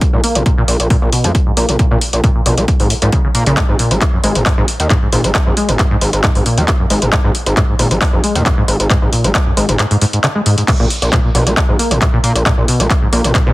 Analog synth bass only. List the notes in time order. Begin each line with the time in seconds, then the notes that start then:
0.13 A#1
0.35 A#1
0.68 A#1
0.80 A#1
1.02 A#1
1.24 F2
1.57 A#1
1.69 A#1
1.91 A#1
2.13 A#1
2.46 A#1
2.58 A#1
2.80 G#1
3.02 A#1
3.35 A#2
3.47 A#1
3.69 G#1
3.91 G#1
4.24 G#1
4.35 G#1
4.58 G#1
4.80 D#2
5.13 G#1
5.24 G#1
5.47 G#1
5.69 G#1
6.01 G#1
6.13 G#1
6.36 G#1
6.58 D#2
6.90 G#1
7.02 G#1
7.24 G#1
7.46 G#1
7.79 G#1
7.91 G#1
8.13 G#1
8.35 D#2
8.68 G#1
8.80 G#1
9.02 G#1
9.24 G#1
9.57 G#1
9.69 G#1
10.80 A#1
11.02 A#1
11.35 A#1
11.47 A#1
11.69 G#1
11.91 A#1
12.24 A#2
12.35 A#1
12.58 A#1
12.80 A#1
13.13 A#1
13.24 A#1
13.47 G#1